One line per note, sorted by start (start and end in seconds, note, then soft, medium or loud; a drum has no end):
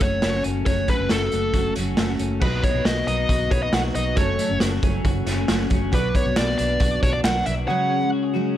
0.00 0.19 F#1 medium
0.00 0.65 F#2 medium
0.00 0.33 F#3 medium
0.00 0.21 A3 medium
0.00 0.34 A3 medium
0.00 0.42 C#4 medium
0.00 0.34 C#4 medium
0.00 1.09 F#4 medium
0.00 0.32 F#4 medium
0.00 0.42 C#5 medium
0.00 kick medium
0.00 closed hi-hat medium
0.22 0.41 F#1 medium
0.22 0.87 A3 medium
0.22 snare loud
0.22 closed hi-hat medium
0.33 0.66 A3 soft
0.33 0.67 C#4 soft
0.33 0.66 F#4 medium
0.44 0.63 F#1 medium
0.44 1.75 C#4 medium
0.44 closed hi-hat medium
0.66 0.85 F#1 loud
0.66 2.42 F#2 medium
0.66 0.87 F#3 medium
0.66 0.88 A3 medium
0.66 0.90 C#4 medium
0.66 0.90 F#4 medium
0.66 0.89 C#5 loud
0.66 kick loud
0.66 closed hi-hat medium
0.88 1.21 F#3 medium
0.88 1.30 A3 medium
0.88 1.22 A3 medium
0.88 1.22 C#4 medium
0.88 1.20 F#4 medium
0.88 1.11 B4 medium
0.88 kick medium
0.88 closed hi-hat medium
1.00 1.09 F#1 medium
1.09 1.29 F#1 medium
1.09 1.53 F#4 medium
1.09 1.73 A4 medium
1.09 snare medium
1.09 closed hi-hat medium
1.21 1.54 A3 soft
1.21 1.55 C#4 soft
1.21 1.54 F#4 soft
1.31 1.51 F#1 medium
1.31 1.97 A3 medium
1.31 closed hi-hat medium
1.54 1.72 F#1 medium
1.54 1.75 F#3 medium
1.54 1.76 A3 medium
1.54 1.77 C#4 medium
1.54 2.85 F#4 medium
1.54 1.78 F#4 medium
1.54 kick medium
1.54 closed hi-hat medium
1.76 1.95 F#1 medium
1.76 2.09 F#3 medium
1.76 2.10 A3 medium
1.76 2.19 C#4 medium
1.76 2.09 C#4 medium
1.76 2.07 F#4 medium
1.76 closed hi-hat medium
1.97 2.16 F#1 medium
1.97 2.46 A3 medium
1.97 snare loud
1.97 closed hi-hat medium
2.08 2.42 A3 soft
2.08 2.42 C#4 medium
2.08 2.42 F#4 medium
2.19 2.38 F#1 medium
2.19 2.46 C#4 medium
2.19 closed hi-hat medium
2.40 2.60 B1 loud
2.40 2.75 B2 medium
2.40 4.17 B2 medium
2.40 2.75 F#3 medium
2.40 2.75 B3 medium
2.40 2.73 D#4 medium
2.40 3.48 F#4 medium
2.40 3.49 B4 soft
2.40 2.63 B4 medium
2.40 3.50 D#5 medium
2.40 kick loud
2.40 crash medium
2.63 4.22 B3 medium
2.63 2.86 C#5 medium
2.63 kick medium
2.63 closed hi-hat medium
2.74 2.83 B1 medium
2.74 3.07 F#3 soft
2.74 3.08 B3 soft
2.74 3.07 D#4 medium
2.85 3.03 B1 medium
2.85 3.29 F#4 medium
2.85 3.06 D#5 medium
2.85 snare loud
2.85 closed hi-hat medium
3.07 3.25 B1 medium
3.07 3.72 B2 medium
3.07 3.74 F#3 medium
3.07 3.74 B3 medium
3.07 3.50 D#4 medium
3.07 3.75 D#4 medium
3.07 3.51 D#5 medium
3.07 closed hi-hat medium
3.29 3.47 B1 medium
3.29 3.72 F#4 medium
3.29 kick medium
3.29 closed hi-hat medium
3.50 3.70 B1 medium
3.50 3.94 D#4 medium
3.50 4.14 F#4 medium
3.50 4.17 B4 soft
3.50 3.62 C#5 medium
3.50 4.17 D#5 medium
3.50 kick medium
3.50 closed hi-hat medium
3.63 3.74 D#5 medium
3.73 3.91 B1 loud
3.73 3.93 B2 medium
3.73 3.95 F#3 medium
3.73 3.96 B3 medium
3.73 3.97 D#4 medium
3.73 4.60 F#4 medium
3.73 3.80 F#5 loud
3.73 snare loud
3.73 closed hi-hat medium
3.95 4.13 B1 medium
3.95 4.17 B2 medium
3.95 4.18 F#3 medium
3.95 4.18 B3 medium
3.95 4.22 D#4 medium
3.95 4.19 D#4 medium
3.95 4.16 D#5 medium
3.95 closed hi-hat medium
4.15 4.35 F#1 loud
4.15 5.92 F#2 medium
4.15 4.50 F#2 medium
4.15 4.51 C#3 medium
4.15 4.51 F#3 medium
4.15 5.88 F#4 medium
4.15 5.89 A4 medium
4.15 4.58 C#5 medium
4.15 5.90 C#5 medium
4.15 kick loud
4.15 closed hi-hat medium
4.19 4.50 A3 medium
4.19 4.48 C#4 medium
4.39 5.97 A3 medium
4.39 closed hi-hat medium
4.49 4.59 F#1 loud
4.49 4.82 F#3 soft
4.49 4.84 A3 medium
4.49 4.83 C#4 medium
4.60 4.79 F#1 medium
4.60 5.05 F#4 medium
4.60 snare medium
4.60 closed hi-hat loud
4.83 5.01 F#1 medium
4.83 5.47 C#3 medium
4.83 5.49 F#3 medium
4.83 5.49 A3 medium
4.83 5.25 C#4 medium
4.83 5.50 C#4 medium
4.83 kick medium
4.83 closed hi-hat medium
5.05 5.23 F#1 loud
5.05 5.48 F#4 medium
5.05 kick medium
5.05 closed hi-hat medium
5.26 5.45 F#1 medium
5.26 5.69 C#4 medium
5.26 snare soft
5.26 closed hi-hat medium
5.48 5.67 F#1 medium
5.48 5.69 C#3 medium
5.48 5.70 F#3 medium
5.48 5.71 A3 medium
5.48 5.72 C#4 medium
5.48 6.36 F#4 medium
5.48 snare loud
5.48 closed hi-hat medium
5.70 5.89 F#1 medium
5.70 5.91 C#3 medium
5.70 5.92 F#3 medium
5.70 5.93 A3 medium
5.70 5.97 C#4 medium
5.70 5.94 C#4 medium
5.70 kick medium
5.70 closed hi-hat medium
5.92 6.11 B1 loud
5.92 6.25 B2 medium
5.92 7.68 B2 medium
5.92 6.26 F#3 medium
5.92 6.26 B3 medium
5.92 6.24 D4 medium
5.92 7.64 F#4 medium
5.92 7.65 B4 medium
5.92 6.14 B4 medium
5.92 7.66 D5 medium
5.92 kick loud
5.92 closed hi-hat medium
6.15 7.72 B3 medium
6.15 6.37 C#5 medium
6.15 kick medium
6.15 closed hi-hat medium
6.25 6.35 B1 loud
6.25 6.58 F#3 soft
6.25 6.59 B3 soft
6.25 6.58 D4 medium
6.36 6.55 B1 loud
6.36 6.80 F#4 medium
6.36 6.57 D5 medium
6.36 snare medium
6.36 clap medium
6.36 closed hi-hat medium
6.58 6.77 B1 medium
6.58 7.23 B2 medium
6.58 7.25 F#3 medium
6.58 7.25 B3 medium
6.58 7.02 D4 medium
6.58 7.25 D4 medium
6.58 6.99 D5 medium
6.58 closed hi-hat medium
6.80 6.99 B1 loud
6.80 7.24 F#4 medium
6.80 kick medium
6.80 clap medium
6.80 closed hi-hat medium
7.03 7.21 B1 loud
7.03 7.45 D4 medium
7.03 7.13 C#5 medium
7.03 kick medium
7.03 closed hi-hat medium
7.13 7.18 D5 medium
7.24 7.42 B1 loud
7.24 7.45 B2 medium
7.24 7.46 F#3 medium
7.24 7.47 B3 medium
7.24 7.48 D4 medium
7.24 8.12 F#4 medium
7.24 7.46 F#5 loud
7.24 snare loud
7.24 clap loud
7.24 closed hi-hat medium
7.46 7.64 B1 medium
7.46 7.68 B2 medium
7.46 7.68 F#3 medium
7.46 7.69 B3 medium
7.46 7.72 D4 medium
7.46 7.70 D4 medium
7.46 7.52 E5 loud
7.46 closed hi-hat medium
7.67 8.01 C#3 medium
7.67 8.57 C#3 medium
7.67 8.02 F#3 medium
7.67 8.01 G#3 medium
7.67 8.57 F#4 medium
7.67 8.57 G#4 medium
7.67 8.57 C#5 medium
7.67 8.09 F#5 loud
7.71 8.00 C#4 medium
7.90 8.57 C#4 medium
8.01 8.33 F#3 soft
8.01 8.35 G#3 medium
8.01 8.34 C#4 medium
8.12 8.23 F#4 medium
8.23 8.55 G#4 medium
8.33 8.57 C#3 medium
8.33 8.57 F#3 medium
8.33 8.57 G#3 medium
8.33 8.57 C#4 medium
8.33 8.57 F#4 medium